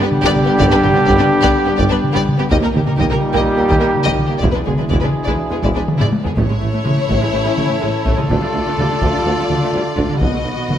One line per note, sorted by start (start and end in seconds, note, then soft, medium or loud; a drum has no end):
0.00 2.33 D3 loud
0.00 2.33 G3 loud
0.00 2.46 B3 loud
0.00 0.06 B3 medium
0.00 2.46 D4 loud
0.00 2.47 G4 loud
0.00 0.08 B4 medium
0.12 taiko mid medium
0.22 0.27 G2 loud
0.22 0.30 B3 loud
0.22 0.27 G4 loud
0.22 0.30 D5 loud
0.22 taiko loud
0.36 taiko mid medium
0.44 0.51 G2 medium
0.44 0.49 B3 medium
0.44 0.53 B3 medium
0.44 0.52 G4 medium
0.57 0.65 G1 loud
0.57 0.63 G2 loud
0.57 0.65 B3 medium
0.57 0.63 G4 loud
0.57 0.64 D5 loud
0.57 taiko loud
0.70 0.75 G2 medium
0.70 0.77 B3 medium
0.70 0.76 D4 medium
0.70 0.77 B4 medium
0.81 0.89 G1 medium
0.81 0.86 G2 medium
0.81 0.88 B3 medium
0.81 0.89 B3 medium
0.81 0.88 G4 medium
0.81 taiko mid medium
0.93 0.99 G2 medium
0.93 1.01 B3 medium
0.93 0.99 D4 medium
0.93 1.00 B4 medium
0.93 taiko mid medium
1.04 1.13 G1 loud
1.04 1.10 G2 loud
1.04 1.13 B3 medium
1.04 1.12 G4 loud
1.04 1.11 D5 medium
1.08 1.13 G1 loud
1.08 taiko loud
1.17 1.22 G2 medium
1.17 1.25 B3 medium
1.17 1.23 D4 medium
1.17 1.24 B4 medium
1.17 taiko mid medium
1.40 1.46 G2 loud
1.40 1.48 B3 loud
1.40 1.47 G4 loud
1.40 1.47 D5 loud
1.40 taiko medium
1.65 1.70 G2 medium
1.65 1.70 B3 medium
1.65 1.72 B3 medium
1.65 1.72 G4 medium
1.77 1.84 G1 loud
1.77 1.82 G2 loud
1.77 1.83 B3 medium
1.77 1.82 G4 medium
1.77 1.83 D5 loud
1.77 taiko medium
1.89 1.94 G2 medium
1.89 1.95 B3 medium
1.89 1.95 D4 medium
1.89 1.96 B4 medium
2.04 taiko mid medium
2.12 2.19 G2 loud
2.12 2.19 B3 medium
2.12 2.18 G4 medium
2.12 2.20 D5 loud
2.12 taiko medium
2.29 taiko mid medium
2.37 2.42 G2 medium
2.37 2.42 B3 medium
2.37 2.43 B3 medium
2.37 2.44 G4 medium
2.49 2.54 D#2 medium
2.49 2.56 D#2 medium
2.49 2.56 D#2 loud
2.49 4.38 A#2 medium
2.49 4.39 G3 loud
2.49 2.55 A#3 medium
2.49 4.39 A#3 medium
2.49 4.39 D#4 loud
2.49 2.55 G4 medium
2.49 4.39 G4 medium
2.49 2.56 D#5 loud
2.49 taiko loud
2.61 2.66 D#2 medium
2.61 2.67 A#3 medium
2.61 2.67 D#4 medium
2.61 2.69 A#4 medium
2.73 2.78 D#2 medium
2.73 2.80 D#2 medium
2.73 2.79 A#3 medium
2.73 2.81 G4 medium
2.73 taiko mid medium
2.85 2.90 D#2 medium
2.85 2.91 A#3 medium
2.85 2.92 D#4 medium
2.85 2.92 A#4 medium
2.85 taiko mid medium
2.96 3.02 D#2 medium
2.96 3.03 D#2 medium
2.96 3.04 D#2 medium
2.96 3.03 A#3 medium
2.96 3.02 G4 medium
2.96 3.05 D#5 medium
2.96 taiko loud
3.09 3.14 D#2 medium
3.09 3.15 A#3 medium
3.09 3.15 D#4 medium
3.09 3.17 A#4 medium
3.09 taiko mid medium
3.33 3.38 D#2 loud
3.33 3.38 A#3 loud
3.33 3.38 G4 medium
3.33 3.41 D#5 medium
3.33 taiko medium
3.56 3.62 D#2 medium
3.56 3.62 A#3 medium
3.56 3.63 A#3 medium
3.56 3.63 G4 medium
3.68 3.73 D#2 medium
3.68 3.75 D#2 medium
3.68 3.76 D#2 medium
3.68 3.75 A#3 medium
3.68 3.74 G4 medium
3.68 3.74 D#5 medium
3.68 taiko medium
3.80 3.86 D#2 medium
3.80 3.86 A#3 medium
3.80 3.86 D#4 medium
3.80 3.86 A#4 medium
3.95 taiko mid medium
4.04 4.10 D#2 medium
4.04 4.10 A#3 medium
4.04 4.11 G4 medium
4.04 4.09 D#5 medium
4.04 taiko medium
4.19 taiko mid medium
4.27 4.35 D#2 soft
4.27 4.34 A#3 medium
4.27 4.35 A#3 medium
4.27 4.32 G4 medium
4.38 4.46 E1 medium
4.38 4.46 E2 medium
4.38 4.46 G#3 medium
4.38 4.46 E4 medium
4.38 6.09 E4 medium
4.38 6.09 G#4 medium
4.38 4.44 D5 medium
4.42 4.47 E1 medium
4.42 6.10 B2 medium
4.42 6.10 E3 medium
4.42 6.09 D4 medium
4.42 taiko loud
4.51 4.58 E2 medium
4.51 4.59 G#3 medium
4.51 4.59 D4 soft
4.51 4.57 B4 medium
4.65 4.71 E1 medium
4.65 4.72 E1 medium
4.65 4.71 E2 medium
4.65 4.71 G#3 medium
4.65 4.70 B3 soft
4.65 4.71 G#4 soft
4.65 taiko mid medium
4.77 4.83 E2 medium
4.77 4.84 G#3 soft
4.77 4.83 D4 soft
4.77 4.83 B4 medium
4.77 taiko mid medium
4.89 4.95 E1 medium
4.89 4.96 E1 medium
4.89 4.96 E2 medium
4.89 4.95 G#3 medium
4.89 4.96 E4 medium
4.89 4.94 D5 medium
4.89 taiko loud
5.01 5.08 E2 medium
5.01 5.07 G#3 medium
5.01 5.08 D4 medium
5.01 5.06 B4 soft
5.01 taiko mid medium
5.24 5.32 E2 medium
5.24 5.32 G#3 medium
5.24 5.32 E4 medium
5.24 5.30 D5 medium
5.24 taiko medium
5.50 5.56 E2 medium
5.50 5.56 G#3 medium
5.50 5.57 B3 medium
5.50 5.57 G#4 medium
5.63 5.69 E1 medium
5.63 5.70 E1 medium
5.63 5.68 E2 medium
5.63 5.68 G#3 medium
5.63 5.68 E4 medium
5.63 5.68 D5 medium
5.63 taiko medium
5.75 5.80 E2 medium
5.75 5.80 G#3 medium
5.75 5.80 D4 medium
5.75 5.81 B4 medium
5.88 taiko mid loud
5.98 6.04 E2 medium
5.98 6.05 G#3 medium
5.98 6.04 E4 medium
5.98 6.06 D5 medium
5.98 taiko low-mid loud
6.12 taiko high medium
6.23 6.29 E2 medium
6.23 6.29 G#3 medium
6.23 6.28 B3 medium
6.23 6.31 G#4 medium
6.23 taiko low loud
6.36 6.43 A1 medium
6.36 6.41 A2 medium
6.36 8.25 E3 medium
6.36 10.16 A3 medium
6.36 6.42 A3 medium
6.36 8.25 C#4 medium
6.36 8.25 E4 medium
6.36 8.26 E4 medium
6.36 10.16 A4 medium
6.36 8.26 C#5 medium
6.36 taiko loud
6.49 6.54 A2 medium
6.49 6.55 G#3 soft
6.61 6.67 A1 medium
6.61 6.66 A2 soft
6.61 6.66 A3 medium
6.72 6.78 A2 medium
6.72 6.78 A3 medium
6.84 6.91 A1 medium
6.84 6.90 A2 medium
6.84 6.90 G#3 medium
6.84 taiko mid medium
6.96 7.01 A2 soft
6.96 7.01 A3 medium
7.08 7.15 A1 medium
7.08 7.16 A1 medium
7.08 7.13 A2 medium
7.08 7.14 A3 medium
7.08 taiko medium
7.20 7.25 A2 medium
7.20 7.26 G#3 medium
7.33 7.38 A1 medium
7.33 7.39 A1 medium
7.33 7.38 A2 medium
7.33 7.38 A3 medium
7.44 7.50 A2 medium
7.44 7.50 G#3 medium
7.56 7.63 A1 soft
7.56 7.63 A1 medium
7.56 7.61 A2 medium
7.56 7.62 A3 medium
7.56 taiko mid medium
7.68 7.73 A2 medium
7.68 7.73 A3 medium
7.81 7.87 A1 medium
7.81 7.87 A1 soft
7.81 7.86 A2 medium
7.81 7.86 G#3 medium
8.04 8.11 A1 medium
8.04 8.09 A2 medium
8.04 8.10 A3 medium
8.04 taiko medium
8.16 8.21 A2 soft
8.16 8.22 G#3 medium
8.16 taiko mid medium
8.29 8.34 D2 medium
8.29 8.35 D2 medium
8.29 8.34 D3 medium
8.29 10.17 D3 medium
8.29 8.35 A3 medium
8.29 10.17 D4 medium
8.29 10.16 F4 medium
8.29 10.17 F4 medium
8.29 10.21 D5 medium
8.29 taiko loud
8.40 8.45 D3 medium
8.40 8.46 G3 soft
8.53 8.58 D2 medium
8.53 8.59 D2 medium
8.53 8.58 D3 soft
8.53 8.59 A3 medium
8.65 8.70 D3 medium
8.65 8.72 A3 medium
8.77 8.83 D2 medium
8.77 8.82 D3 medium
8.77 8.84 G3 medium
8.77 taiko mid medium
8.89 8.94 D3 soft
8.89 8.96 A3 medium
9.01 9.06 D2 medium
9.01 9.07 D2 medium
9.01 9.06 D3 medium
9.01 9.08 A3 medium
9.01 taiko medium
9.12 9.17 D3 soft
9.12 9.20 G3 medium
9.25 9.30 D2 medium
9.25 9.31 D2 medium
9.25 9.29 D3 medium
9.25 9.31 A3 medium
9.36 9.41 D3 medium
9.36 9.43 G3 soft
9.48 9.54 D2 medium
9.48 9.55 D2 soft
9.48 9.53 D3 medium
9.48 9.56 A3 medium
9.48 taiko mid medium
9.60 9.65 D3 medium
9.60 9.68 A3 medium
9.72 9.78 D2 soft
9.72 9.79 D2 medium
9.72 9.77 D3 medium
9.72 9.80 G3 medium
9.96 10.02 D2 medium
9.96 10.01 D3 medium
9.96 10.04 A3 medium
9.96 taiko medium
10.08 10.13 D3 soft
10.08 taiko mid medium
10.12 10.16 G3 medium
10.20 10.25 B1 medium
10.20 10.26 B1 medium
10.20 10.25 B2 medium
10.20 10.78 D#3 medium
10.20 10.78 F#3 medium
10.20 10.78 B3 medium
10.20 10.27 B3 medium
10.20 10.78 F#4 medium
10.20 10.78 B4 medium
10.20 10.78 D#5 medium
10.20 taiko loud
10.33 10.37 B2 medium
10.33 10.39 A3 medium
10.44 10.49 B1 medium
10.44 10.50 B1 soft
10.44 10.49 B2 soft
10.44 10.51 B3 soft
10.56 10.61 B2 medium
10.56 10.63 B3 medium
10.68 10.73 B1 soft
10.68 10.73 B2 medium
10.68 10.75 A3 soft
10.68 taiko mid medium